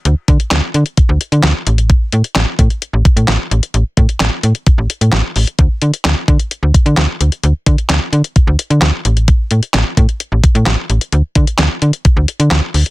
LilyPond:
<<
  \new Staff \with { instrumentName = "FM bass" } { \clef bass \time 4/4 \key a \mixolydian \tempo 4 = 130 d,16 r16 d16 r16 d,16 r16 d16 r8 d,16 r16 d16 d,16 r16 a,,8~ | a,,16 r16 a,16 r16 a,,16 r16 a,16 r8 a,,16 r16 a,16 a,,16 r16 a,,16 r16 | a,,16 r16 a,16 r16 a,,16 r16 a,16 r8 a,,16 r16 a,16 a,,16 r16 a,,16 r16 | d,16 r16 d16 r16 d,16 r16 d16 r8 d,16 r16 d16 d,16 r16 d,16 r16 |
d,16 r16 d16 r16 d,16 r16 d16 r8 d,16 r16 d16 d,16 r16 a,,8~ | a,,16 r16 a,16 r16 a,,16 r16 a,16 r8 a,,16 r16 a,16 a,,16 r16 a,,16 r16 | d,16 r16 d16 r16 d,16 r16 d16 r8 d,16 r16 d16 d,16 r16 d,16 r16 | }
  \new DrumStaff \with { instrumentName = "Drums" } \drummode { \time 4/4 hh8 <hh bd>16 hh16 <hc hh sn>8 hh16 hh16 <hh bd>8 hh16 hh16 <hc hh sn>8 hh16 hh16 | <hh bd>8 hh16 hh16 <hc hh sn>8 <hh bd>16 hh16 hh8 <hh bd>16 hh16 <hc hh sn>8 hh16 hh16 | hh8 <hh bd>16 hh16 <hc hh sn>8 hh16 hh16 <hh bd>8 hh16 hh16 <hc hh sn>8 hho16 hh16 | <hh bd>8 hh16 hh16 <hc hh sn>8 <hh bd>16 hh16 hh8 <hh bd>16 hh16 <hc hh sn>8 hh16 hh16 |
hh8 <hh bd>16 hh16 <hc hh sn>8 hh16 hh16 <hh bd>8 hh16 hh16 <hc hh sn>8 hh16 hh16 | <hh bd>8 hh16 hh16 <hc hh sn>8 <hh bd>16 hh16 hh8 <hh bd>16 hh16 <hc hh sn>8 hh16 hh16 | hh8 <hh bd>16 hh16 <hc hh sn>8 hh16 hh16 <hh bd>8 hh16 hh16 <hc hh sn>8 hho16 hh16 | }
>>